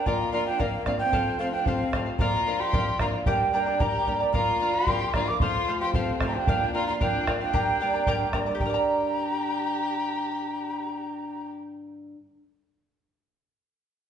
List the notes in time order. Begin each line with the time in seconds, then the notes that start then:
0.06 A#2 F4 A#4 D5 F5 A#5, bombo low
0.32 F3 A#3 D4 F4 A#4 D5 F5 A#5
0.46 D4 D5 F5 G5
0.59 F2 A#3 A#4 D5 F5, bombo low
0.86 F3 A#3 C4 D4 A#4 D5 F5, bombo rim, bombo low
0.99 C4 D5 F5 G5
1.13 F2 A4 C5 F5, bombo low
1.39 F3 A3 C4 A4 C5 F5
1.52 D4 C5 F5 G5
1.66 C3 C4 A4 C5 F5, bombo low
1.93 F3 A3 C4 A4 C5 F5, bombo rim, bombo low
2.06 C5 F5
2.19 A#2 F4 A#4 D5 F5 A#5, bombo low
2.47 F3 A#3 D4 A#4 D5 F5
2.60 G4 D5 F5 C6
2.73 F2 A#4 D5 F5, bombo low
2.99 F3 A#3 D4 F4 A#4 D5 F5 A#5, bombo rim, bombo low
3.13 D5 F5
3.26 G2 D4 G4 A#4 D5 G5 A#5, bombo low
3.53 G3 A#3 D4 A#4 D5 G5 A#5
3.66 A#4 D5 A#5
3.80 D3 G4 A#4 D5 G5 A#5, bombo low
4.07 G3 A#3 D4 A#4 D5 G5 A#5, bombo low
4.20 A#4 D5 A#5
4.32 A#2 F4 A#4 D5 F5 A#5, bombo low
4.60 F3 A#3 D4 A#4 D5 F5
4.74 G4 D5 F5 C6
4.87 F2 A#4 D5 F5, bombo low
5.14 F3 A#3 D4 F4 A#4 D5 F5 A#5, bombo rim, bombo low
5.27 A#4 D5 F5 D6
5.40 F2 F4 A4 C5 F5 C6, bombo low
5.68 F3 A3 C4 A4 C5 F5
5.81 G4 C5 F5 C6
5.94 C3 C4 A4 C5 F5, bombo low
6.21 F3 A3 C4 A4 C5 F5, bombo rim, bombo low
6.27 G4 A#5
6.34 D4 C5 F5 G5
6.47 A#2 A#4 D5 F5, bombo low
6.74 F3 A#3 D4 F4 A#4 D5 F5 A#5
6.87 F4 D5 F5 A#5
7.00 F2 D4 A#4 D5 F5 G5, bombo low
7.27 F3 A#3 D4 A#4 D5 F5, bombo rim, bombo low
7.41 D4 D5 F5 G5
7.53 G2 G4 A#4 D5 G5 A#5, bombo low
7.80 G3 A#3 D4 A#4 D5 G5 A#5
7.94 A#4 D5 A#5
8.07 D3 G4 A#4 D5 G5 A#5, bombo low
8.33 G3 A#3 D4 A#4 D5 G5 A#5, bombo rim, bombo low
8.46 G2 A#4 D5 A#5
8.51 D3 G4
8.57 G3 G5 A#5, bombo low
8.62 D4 G4 A#4
8.68 A#4 D5
8.74 G5 A#5